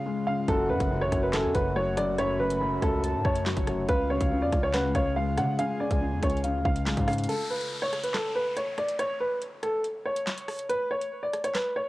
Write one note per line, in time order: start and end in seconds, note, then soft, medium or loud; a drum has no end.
0.00 0.27 C#3 medium
0.00 3.85 C#3 medium
0.00 0.06 G#3 medium
0.00 0.45 G#3 medium
0.00 0.45 F4 loud
0.00 0.24 F5 medium
0.06 0.48 G#3 medium
0.27 0.48 C#3 medium
0.27 0.45 F5 medium
0.48 0.71 F#1 loud
0.48 0.68 F#2 medium
0.48 3.85 A3 medium
0.48 3.85 F#4 loud
0.48 0.66 A4 loud
0.48 1.29 F#5 loud
0.48 kick loud
0.48 closed hi-hat medium
0.69 0.89 F#2 medium
0.69 0.80 F#2 loud
0.69 0.99 B4 medium
0.80 1.03 F#1 loud
0.80 kick loud
0.80 closed hi-hat medium
0.91 1.11 F#2 medium
1.01 1.11 A1 loud
1.01 1.20 C#5 medium
1.12 1.45 F#1 loud
1.12 1.32 F#2 medium
1.12 kick medium
1.12 cross-stick medium
1.12 closed hi-hat medium
1.23 1.32 B4 medium
1.33 1.53 F#2 medium
1.33 1.52 A4 medium
1.33 1.54 G#5 medium
1.33 snare loud
1.33 clap medium
1.33 closed hi-hat medium
1.44 1.54 F#2 loud
1.54 2.78 F#1 loud
1.54 1.96 F#2 medium
1.54 1.73 B4 medium
1.54 2.15 F#5 medium
1.54 kick loud
1.54 closed hi-hat medium
1.75 2.82 F#3 medium
1.75 1.94 C#5 medium
1.97 2.17 F#2 medium
1.97 2.15 D5 medium
1.97 cross-stick loud
1.97 closed hi-hat loud
2.18 2.38 F#2 loud
2.18 2.37 C#5 loud
2.18 3.00 B5 loud
2.18 closed hi-hat medium
2.40 2.60 F#2 medium
2.40 2.58 B4 medium
2.50 closed hi-hat medium
2.61 3.66 F#2 medium
2.82 3.16 C#2 loud
2.82 3.00 A4 medium
2.82 kick medium
2.82 cross-stick medium
2.82 closed hi-hat medium
3.04 3.44 A5 medium
3.04 closed hi-hat medium
3.14 3.24 A2 loud
3.25 3.55 F#2 loud
3.25 3.85 C#5 medium
3.25 kick medium
3.35 closed hi-hat medium
3.46 3.89 F#3 medium
3.46 snare loud
3.46 clap medium
3.57 3.87 F1 loud
3.57 kick loud
3.57 closed hi-hat medium
3.67 3.89 F#2 medium
3.67 cross-stick loud
3.67 closed hi-hat medium
3.89 4.19 C#2 loud
3.89 4.09 C#3 medium
3.89 7.26 C#3 medium
3.89 7.26 G#3 medium
3.89 7.26 F4 loud
3.89 4.07 B4 loud
3.89 4.70 F5 loud
3.89 kick loud
3.89 closed hi-hat medium
4.10 4.30 C#3 medium
4.10 4.40 C#5 medium
4.21 4.43 C#2 loud
4.21 kick loud
4.21 closed hi-hat medium
4.31 4.51 C#3 medium
4.42 4.52 F2 loud
4.42 4.60 D5 medium
4.52 4.75 C#2 loud
4.52 4.73 C#3 medium
4.52 kick medium
4.52 cross-stick medium
4.52 closed hi-hat medium
4.63 4.72 C#5 medium
4.73 4.86 D2 loud
4.73 4.94 C#3 medium
4.73 4.92 B4 medium
4.73 4.94 F#5 medium
4.73 snare loud
4.73 clap loud
4.73 closed hi-hat medium
4.84 4.94 C#2 loud
4.95 5.39 C#2 loud
4.95 5.36 C#3 medium
4.95 5.13 C#5 medium
4.95 5.55 F5 medium
4.95 kick loud
4.95 closed hi-hat medium
5.16 6.23 G#3 medium
5.16 5.34 F5 medium
5.38 5.57 C#3 medium
5.38 5.48 C#3 loud
5.38 5.56 F#5 medium
5.38 cross-stick loud
5.38 closed hi-hat loud
5.59 5.79 C#3 loud
5.59 5.77 F5 loud
5.59 6.40 G#5 loud
5.59 closed hi-hat medium
5.80 5.99 C#3 medium
5.80 5.98 D5 medium
5.91 6.14 C#2 loud
5.91 kick loud
5.91 closed hi-hat medium
6.01 6.23 C#3 medium
6.12 6.22 F2 loud
6.23 6.56 C#2 loud
6.23 6.43 C#3 medium
6.23 6.41 C#5 medium
6.23 kick medium
6.23 cross-stick medium
6.23 closed hi-hat medium
6.30 closed hi-hat medium
6.37 closed hi-hat soft
6.44 6.63 C#3 medium
6.44 7.25 F5 medium
6.44 closed hi-hat medium
6.55 6.65 D2 loud
6.65 6.88 C#2 loud
6.65 7.07 C#3 medium
6.65 7.05 F5 medium
6.65 kick loud
6.76 closed hi-hat medium
6.86 6.97 B1 loud
6.86 7.29 G#3 medium
6.86 snare loud
6.86 clap medium
6.97 7.28 G#2 loud
6.97 kick loud
6.97 closed hi-hat medium
7.08 7.29 C#3 medium
7.08 7.26 F5 medium
7.08 cross-stick loud
7.08 closed hi-hat medium
7.08 open hi-hat medium
7.13 closed hi-hat medium
7.18 closed hi-hat medium
7.24 closed hi-hat loud
7.29 7.47 A4 loud
7.29 closed hi-hat medium
7.29 downlifter medium
7.50 7.80 B4 medium
7.61 closed hi-hat medium
7.82 8.00 C#5 medium
7.93 cross-stick medium
7.93 closed hi-hat medium
8.03 8.13 B4 medium
8.03 closed hi-hat medium
8.14 8.32 A4 medium
8.14 snare loud
8.14 clap medium
8.35 8.54 B4 medium
8.57 8.75 C#5 medium
8.57 closed hi-hat medium
8.78 8.96 D5 medium
8.78 cross-stick loud
8.78 closed hi-hat medium
8.89 closed hi-hat loud
8.99 9.17 C#5 loud
8.99 closed hi-hat medium
9.20 9.39 B4 medium
9.42 closed hi-hat medium
9.63 9.81 A4 medium
9.63 cross-stick medium
9.63 closed hi-hat medium
9.84 closed hi-hat medium
10.06 10.66 C#5 medium
10.16 closed hi-hat medium
10.27 snare loud
10.27 clap medium
10.38 closed hi-hat medium
10.48 cross-stick loud
10.48 open hi-hat medium
10.59 closed hi-hat medium
10.69 10.88 B4 loud
10.69 closed hi-hat medium
10.91 11.21 C#5 medium
11.01 closed hi-hat medium
11.23 11.41 D5 medium
11.33 cross-stick medium
11.33 closed hi-hat medium
11.44 11.53 C#5 medium
11.44 closed hi-hat medium
11.55 11.73 B4 medium
11.55 snare loud
11.55 clap medium
11.76 11.89 C#5 medium